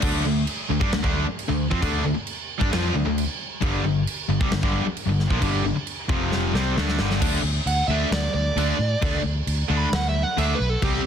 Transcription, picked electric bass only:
0.03 D2
0.25 D2
0.70 D2
0.81 G2
0.94 D2
1.03 D2
1.50 D2
1.71 F2
1.82 D2
2.05 D2
2.17 muted picked electric bass stroke
2.61 G2
2.73 F2
2.95 D2
3.05 D2
3.62 G1
3.83 G1
4.28 G1
4.41 C2
4.51 G1
4.63 G1
5.07 G1
5.30 A#1
5.41 G1
5.64 G1
6.09 F1
6.53 C2
6.77 D2
6.98 G1
7.22 D2
7.43 D2
7.66 D2
7.88 D2
8.11 D2
8.34 D2
8.56 D2
8.79 A2
9.02 D2
9.24 D2
9.47 D2
9.70 D2
9.92 D2
10.38 D2
10.60 B1
10.82 C2

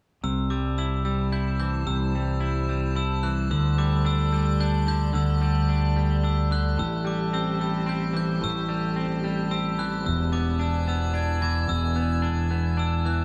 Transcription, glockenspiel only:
0.24 E6
0.50 D6
0.78 E6
1.05 E6
1.33 G6
1.60 G6
1.87 E6
2.96 E6
3.23 F#6
3.51 E6
3.78 D6
4.06 E6
4.34 E6
4.61 G6
4.88 G6
5.15 E6
6.24 E6
6.52 F#6
6.79 E6
7.07 D6
7.34 E6
7.61 E6
7.89 G6
8.17 G6
8.44 E6
9.51 E6
9.79 F#6
10.06 E6
10.33 D6
10.61 E6
10.89 E6
11.15 G#6
11.42 G#6
11.69 E6
12.79 E6
13.06 F#6

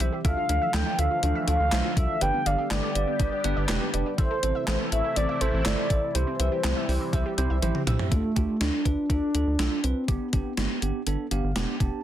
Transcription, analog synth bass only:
0.25 D2
0.49 D2
0.74 D2
0.98 D2
1.23 D2
1.48 D2
1.60 D2
1.72 B1
1.97 C2
2.22 G1
2.46 G1
2.71 G1
2.95 G1
3.20 G1
3.44 G1
3.57 G1
3.69 E1
3.94 F1
4.18 A1
4.43 A1
4.68 A1
4.92 A1
5.17 A1
5.41 A1
5.54 A1
5.66 G1
5.90 A1
6.15 C2
6.40 C2
6.64 C2
6.88 C2
7.13 C2
7.38 C2
7.50 C2
7.62 A1
7.87 B1
8.12 D2
8.37 D2
8.61 D2
8.85 D2
9.10 D2
9.35 D2
9.47 D2
9.59 B1
9.84 C2
10.08 G1
10.33 G1
10.58 G1
10.82 G1
11.07 G1
11.31 G1
11.44 G1
11.56 E1
11.80 F1

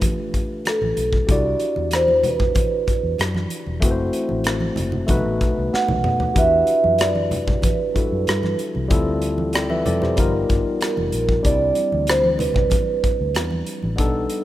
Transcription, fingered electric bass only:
0.81 A1
0.97 B1
1.29 C2
1.77 E2
2.88 muted fingered electric bass stroke
3.03 E2
3.19 F#2
3.67 E1
3.83 F#1
4.31 A1
4.78 F#1
5.10 B1
5.26 A1
5.41 B1
5.58 C2
5.74 muted fingered electric bass stroke
5.90 B1
6.05 B2
6.36 E2
6.84 F#2
7.96 muted fingered electric bass stroke
8.12 F#2
8.28 G2
8.76 C2
8.91 D2
9.87 F2
10.18 G1
10.50 G1
10.98 F1
11.13 A#1
11.45 C2
11.93 D2
13.04 muted fingered electric bass stroke
13.20 D2
13.36 E2
13.84 A1
13.99 B1

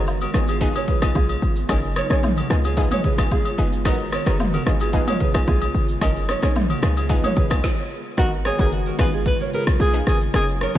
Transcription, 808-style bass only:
Already playing: F#1
0.34 G#1
1.02 A#1
1.15 B1
1.42 G#1
1.69 F#1
2.10 A#1
2.50 C#2
3.18 G#1
3.58 F#1
3.85 G#1
4.26 F#1
4.66 G#1
5.34 A#1
5.48 B1
5.74 G#1
6.01 F#1
6.43 A#1
6.83 C#2
7.37 G#1
7.51 B1
8.18 G#1
8.59 F#1
8.99 G#1
9.67 A#1
9.80 B1
10.07 G#1
10.34 F#1

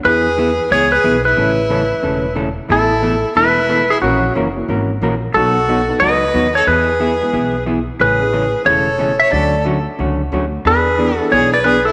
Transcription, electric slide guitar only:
0.05 B4
0.72 C#5
0.92 B4
1.25 B4
2.72 A4
3.37 B4
3.90 G#4
4.02 F#4
5.34 A4
6.00 D#5
6.55 C#5
6.68 B4
8.01 B4
8.66 C#5
9.20 E5
9.32 D5
10.67 B4
11.18 A4
11.32 C#5
11.54 D5
11.64 B4
11.85 A4

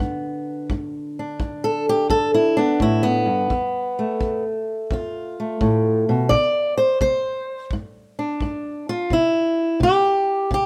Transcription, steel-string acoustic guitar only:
Already playing: D3 B3
0.00 G2
0.71 G2
1.19 D4
1.40 G2
1.64 A4
1.89 G4
2.10 G2 A4
2.34 E4
2.57 B3 D4
2.80 A2 E4
3.03 B3
3.26 G2
3.51 F2
3.99 A3
4.21 F2
4.92 F2 F4
5.40 A3
5.61 A2
6.09 B2
6.29 C3 D5
6.78 C5
7.01 C3 C5
7.73 G2
8.19 D4
8.42 G2
8.89 F4
9.11 C3 E4
9.80 C3 G4
10.51 C3 G4

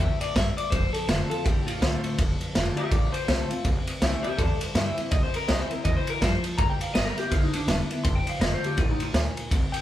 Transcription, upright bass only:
0.00 E2
0.21 muted upright bass stroke
0.36 G2
0.58 muted upright bass stroke
0.72 F1
0.94 muted upright bass stroke
1.08 F1
1.30 muted upright bass stroke
1.46 A1
1.68 muted upright bass stroke
1.81 C2
2.03 muted upright bass stroke
2.18 F1
2.40 muted upright bass stroke
2.55 F1
2.77 muted upright bass stroke
2.92 A1
3.13 muted upright bass stroke
3.28 C2
3.51 muted upright bass stroke
3.64 C2
3.87 muted upright bass stroke
4.01 C2
4.23 muted upright bass stroke
4.39 E2
4.60 muted upright bass stroke
4.75 G2
4.98 muted upright bass stroke
5.12 C2
5.34 muted upright bass stroke
5.49 C2
5.70 muted upright bass stroke
5.85 E2
6.06 muted upright bass stroke
6.22 G2
6.44 muted upright bass stroke
6.59 G1
6.80 muted upright bass stroke
6.95 G1
7.16 muted upright bass stroke
7.32 B1
7.53 muted upright bass stroke
7.67 E1
7.89 muted upright bass stroke
8.05 F1
8.26 muted upright bass stroke
8.39 F1
8.62 muted upright bass stroke
8.78 A1
8.99 muted upright bass stroke
9.14 D2
9.36 muted upright bass stroke
9.52 C2
9.72 muted upright bass stroke

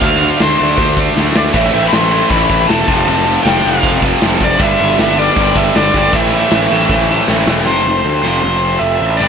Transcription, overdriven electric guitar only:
Already playing: F5
0.42 C5
1.37 D5
1.55 E5
1.88 B5
1.94 C6
2.30 B5
2.68 A5
2.87 A5
3.06 A5
3.44 G5
3.65 F5
4.44 D5
4.62 E5
5.01 E5
5.19 D5
5.56 E5
5.76 D5
5.96 D5
6.14 E5
7.66 C5
8.22 C5
8.40 C5
8.79 E5
9.17 D5

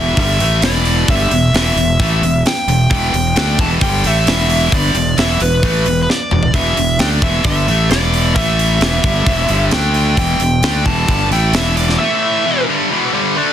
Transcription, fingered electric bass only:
Already playing: E1
0.17 G1
0.41 A1
0.63 E1
1.08 G1
1.31 E1
1.54 E1
1.76 E1
1.99 A1
2.22 E1
2.67 E1
2.91 E1
3.13 E1
3.36 D2
3.58 E1
3.81 G1
4.04 A1
4.27 E1
4.72 G1
4.95 E1
5.18 E1
5.41 E1
5.63 A1
5.85 E1
6.32 E1
6.53 E1
6.77 E1
7.00 D2
7.22 E1
7.44 G1
7.68 A1
7.90 E1
8.35 A1
8.81 E1
9.04 G1
9.26 E1
9.50 G1
9.72 D2
10.17 E1
10.39 E1
10.62 D2
10.86 E1
11.09 G1
11.31 A1
11.53 E1

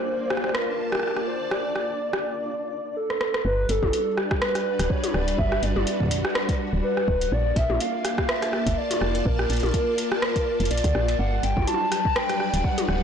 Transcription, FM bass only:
3.45 G1
3.69 G1
3.83 G1
4.79 D1
5.14 D1
5.38 G1
5.63 G1
5.76 G1
6.73 D1
7.08 D1
7.32 A#1
7.56 A#1
7.70 A#1
8.66 F1
9.01 F1
9.26 A#1
9.50 A#1
9.63 A#1
10.60 F1
10.71 A#1
10.84 D2
10.95 A#1
11.19 G1
11.43 G1
11.57 G1
12.54 D1
12.88 D1

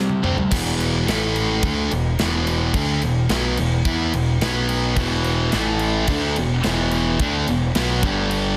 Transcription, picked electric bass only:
Already playing: C3
0.23 D2
0.52 E1
1.07 A1
1.62 D2
1.91 E1
2.19 E1
2.74 D2
3.03 E1
3.30 B1
3.58 E1
3.85 E2
4.14 E1
4.42 B1
4.97 E1
5.54 A1
6.08 D2
6.38 E1
6.65 E1
7.20 D2
7.47 E1
7.76 B1
8.03 G1

